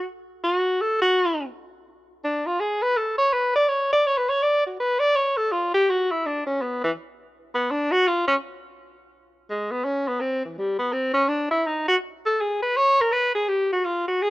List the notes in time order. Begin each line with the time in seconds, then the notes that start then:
0.44 F#4
0.81 A4
1.02 F#4
2.24 D4
2.46 F4
2.60 G#4
2.82 B4
2.97 A4
3.18 C#5
3.33 B4
3.55 D5
3.68 C#5
3.93 D5
4.06 C#5
4.17 B4
4.29 C#5
4.42 D5
4.66 F#4
4.80 B4
5.00 D5
5.16 C#5
5.37 A4
5.52 F4
5.74 G4
5.90 F#4
6.11 E4
6.26 D4
6.47 C#4
6.62 B3
6.84 E3
7.55 B3
7.71 D4
7.92 F#4
8.07 F4
8.28 C#4
9.50 G#3
9.71 B3
9.84 C#4
10.08 B3
10.20 C4
10.45 E3
10.58 G3
10.79 B3
10.92 C4
11.14 C#4
11.28 D4
11.51 E4
11.67 D#4
11.88 F#4
12.26 A4
12.41 G#4
12.62 B4
12.76 C#5
13.01 A#4
13.12 B4
13.35 G#4
13.48 G4
13.72 F#4
13.85 F4
14.08 F#4
14.22 G#4